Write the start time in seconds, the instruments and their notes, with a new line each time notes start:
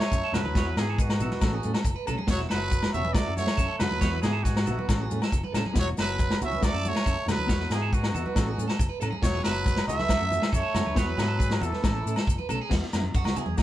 Already playing: tenor saxophone A3, trumpet C#5
0.00 clean electric guitar G#4, snare, low agogo
0.12 fingered electric bass F#2, kick, low conga, maracas
0.24 clean electric guitar A4
0.32 fingered electric bass F#2, tenor saxophone F#3, clean electric guitar A3 E4 F#4, trumpet B4, snare, low conga, low agogo, maracas
0.44 fingered electric bass D2, clean electric guitar B4, high conga
0.55 fingered electric bass E2, clean electric guitar E3 E4 F#4 C#5, muted clean electric guitar stroke, kick, snare, maracas
0.67 clean electric guitar B4
0.76 fingered electric bass G#2, tenor saxophone E3, clean electric guitar B3 E4 F#4 G#4, trumpet G#4, snare, low agogo, maracas
0.90 clean electric guitar A4
0.98 tenor saxophone B2, trumpet F#4, clean electric guitar G#4, kick, maracas
1.09 snare, low agogo
1.20 fingered electric bass A#1, clean electric guitar B3 E4 A4, muted clean electric guitar stroke, low conga, maracas
1.31 clean electric guitar B4, snare, high conga
1.41 fingered electric bass A1, clean electric guitar E3 A3 C#4 A4, kick, snare, low agogo, maracas
1.54 clean electric guitar G#4
1.63 fingered electric bass A2, clean electric guitar A3 C#4 A4, high conga, maracas
1.74 clean electric guitar A4, snare, low agogo
1.85 fingered electric bass F#1, kick, low conga, maracas
1.96 clean electric guitar B4
2.06 fingered electric bass B1, clean electric guitar A3 C#4 A4, low conga, low agogo, maracas
2.18 clean electric guitar G#4, high conga
2.27 fingered electric bass E1, clean electric guitar E3 B3 E4 F#4, trumpet C#5, kick, snare, maracas
2.32 tenor saxophone F#3
2.38 clean electric guitar E4, snare
2.49 fingered electric bass F#1, clean electric guitar E4 F#4 A4, trumpet B4, muted clean electric guitar stroke, snare, low agogo, maracas
2.54 tenor saxophone F#3
2.70 clean electric guitar B4, kick, maracas
2.82 snare, low agogo
2.93 fingered electric bass E1, clean electric guitar B3 E4 F#4 C#5, tenor saxophone C#4, trumpet E5, low conga, maracas
3.04 clean electric guitar B4, high conga
3.13 fingered electric bass D2, clean electric guitar F#3 A3 E4 F#4, tenor saxophone A3, trumpet D5, kick, snare, low agogo, maracas
3.17 clean electric guitar F#4
3.25 fingered electric bass F#2, clean electric guitar A4
3.37 clean electric guitar A3 E4 F#4, tenor saxophone A3, trumpet C#5, snare, high conga, maracas
3.47 clean electric guitar G#4, snare, low agogo
3.57 fingered electric bass F#2, clean electric guitar A4, kick, low conga, maracas
3.68 clean electric guitar A4
3.79 fingered electric bass F#2, tenor saxophone F#3, clean electric guitar A3 E4 F#4, trumpet B4, snare, low conga, low agogo, maracas
3.89 fingered electric bass D#2, clean electric guitar B4, high conga
4.01 fingered electric bass E2, clean electric guitar E3 B3 E4 F#4 C#5, kick, snare, maracas
4.12 clean electric guitar B4
4.22 fingered electric bass G#2, tenor saxophone E3, clean electric guitar E4 F#4 G#4, trumpet G#4, snare, low conga, low agogo, maracas
4.26 clean electric guitar B3
4.33 clean electric guitar A4
4.43 trumpet F#4, clean electric guitar G#4, kick, snare, maracas
4.48 tenor saxophone B2
4.56 snare, low agogo
4.66 fingered electric bass A#1, clean electric guitar B3 E4 F#4 A4, low conga, maracas
4.78 clean electric guitar B4, high conga
4.89 fingered electric bass A1, clean electric guitar E3 A3 C#4 A4, kick, snare, low agogo, maracas
5.00 clean electric guitar G#4
5.10 fingered electric bass A2, clean electric guitar A3 C#4 A4, high conga, maracas
5.22 clean electric guitar A4, snare, low agogo
5.32 fingered electric bass F#1, kick, low conga, maracas
5.43 clean electric guitar B4, high conga
5.52 fingered electric bass A2, clean electric guitar A3 C#4 A4, snare, low conga, low agogo, maracas
5.66 clean electric guitar G#4, high conga
5.73 fingered electric bass E1, clean electric guitar E3 B3 E4 F#4, kick, snare, maracas
5.78 tenor saxophone F#3, clean electric guitar F#4, trumpet C#5
5.88 muted clean electric guitar stroke
5.94 clean electric guitar B3 E4 F#4, snare, maracas
5.98 fingered electric bass F#1, tenor saxophone F#3, clean electric guitar A4, trumpet B4, low agogo
6.19 clean electric guitar B4, kick, maracas
6.30 snare, low agogo
6.39 fingered electric bass C#2, clean electric guitar B3 E4 F#4, low conga, maracas
6.44 tenor saxophone C#4, trumpet E5
6.53 clean electric guitar B4, high conga
6.61 fingered electric bass D2, clean electric guitar F#3 A3 E4 F#4, trumpet D5, kick, snare, low agogo, maracas
6.65 tenor saxophone A3
6.73 fingered electric bass F#2, clean electric guitar A4
6.84 clean electric guitar A3 E4 F#4, tenor saxophone A3, high conga, maracas
6.88 trumpet C#5
6.95 clean electric guitar G#4, snare, low agogo
7.06 fingered electric bass F#2, clean electric guitar A4, kick, low conga, maracas
7.17 muted clean electric guitar stroke
7.26 fingered electric bass F#2, tenor saxophone F#3, clean electric guitar A3 E4 F#4, trumpet B4, snare, low conga, low agogo, maracas
7.37 fingered electric bass D2, clean electric guitar B4, high conga
7.46 clean electric guitar E3 B3 E4 F#4 C#5, kick, snare, maracas
7.50 fingered electric bass E2
7.60 clean electric guitar B4, snare
7.69 fingered electric bass G#2, tenor saxophone E3, clean electric guitar B3 E4 F#4 G#4, trumpet G#4, snare, low agogo, maracas
7.82 clean electric guitar A4
7.93 tenor saxophone B2, trumpet F#4, clean electric guitar G#4, kick, maracas
8.03 snare, low agogo
8.13 fingered electric bass E2, clean electric guitar B3 E4 F#4 A4, low conga, maracas
8.26 clean electric guitar B4, high conga
8.35 fingered electric bass A1, clean electric guitar E3 A3 C#4 A4, kick, snare, low agogo, maracas
8.48 clean electric guitar G#4
8.57 fingered electric bass A2, clean electric guitar A3 C#4 A4, high conga, maracas
8.68 clean electric guitar A4, snare, low agogo
8.79 fingered electric bass F#1, kick, low conga, maracas
8.89 clean electric guitar B4
9.00 fingered electric bass A2, clean electric guitar A3 C#4 A4, low conga, low agogo, maracas
9.10 clean electric guitar G#4, high conga
9.22 fingered electric bass E1, clean electric guitar E3 B3 E4 F#4, tenor saxophone F#3, trumpet C#5, muted clean electric guitar stroke, kick, snare, maracas
9.34 clean electric guitar G#4, snare
9.43 fingered electric bass F#1, tenor saxophone F#3, clean electric guitar E4 F#4 A4, trumpet B4, snare, low agogo, maracas
9.47 clean electric guitar B3
9.65 clean electric guitar B4, kick, snare, maracas
9.76 snare, low agogo
9.87 fingered electric bass C#2, tenor saxophone A3, clean electric guitar E4 F#4 C#5, trumpet E5, muted clean electric guitar stroke, low conga, maracas
9.97 clean electric guitar B4, snare, high conga
10.08 fingered electric bass D2, clean electric guitar F#3 A3 E4 F#4, kick, snare, low agogo, maracas
10.19 fingered electric bass F#2, muted clean electric guitar stroke
10.30 clean electric guitar A3 E4 F#4, high conga, maracas
10.42 clean electric guitar G#4, snare, low agogo
10.52 fingered electric bass F#2, tenor saxophone A3, clean electric guitar A4, trumpet C#5, kick, low conga, maracas
10.62 clean electric guitar A4
10.74 fingered electric bass F#2, clean electric guitar A3 E4 F#4, snare, low conga, low agogo, maracas
10.86 fingered electric bass D2, clean electric guitar B4, high conga
10.94 fingered electric bass E2, clean electric guitar E3 B3 E4 C#5, tenor saxophone F#3, trumpet B4, muted clean electric guitar stroke, kick, snare, maracas
11.08 clean electric guitar B4
11.17 fingered electric bass G#2, clean electric guitar B3 E4 F#4 G#4, snare, low conga, low agogo, maracas
11.27 clean electric guitar A4
11.39 clean electric guitar G#4, kick, maracas
11.50 snare, low agogo
11.61 fingered electric bass E2, tenor saxophone E3, clean electric guitar B3 E4 F#4 A4, trumpet A4, high conga, low conga, maracas
11.72 clean electric guitar B4, snare, high conga
11.83 fingered electric bass A1, clean electric guitar E3 A3 C#4 A4, kick, snare, low agogo, maracas
11.94 clean electric guitar E4
12.04 fingered electric bass A2, clean electric guitar A3 C#4 A4, maracas
12.16 clean electric guitar A4, snare, low agogo
12.27 fingered electric bass F#1, kick, low conga, maracas
12.38 clean electric guitar B4, high conga
12.49 fingered electric bass B1, clean electric guitar A3 C#4 A4, low conga, low agogo, maracas
12.61 clean electric guitar G#4
12.69 fingered electric bass E2, clean electric guitar E3 B3 E4 F#4, kick, snare, crash, maracas
12.83 snare
12.93 fingered electric bass F#2, clean electric guitar B3 E4 F#4, snare, low agogo, maracas
13.03 high conga, maracas
13.14 fingered electric bass F#2, clean electric guitar F#4, kick, maracas
13.24 fingered electric bass C#2, snare, high conga, low agogo
13.35 clean electric guitar B3 E4 F#4 G#4, low conga, maracas
13.46 fingered electric bass E2, high conga
13.57 fingered electric bass D2, clean electric guitar F#3 A3 E4 F#4, kick, snare, high conga, low agogo, maracas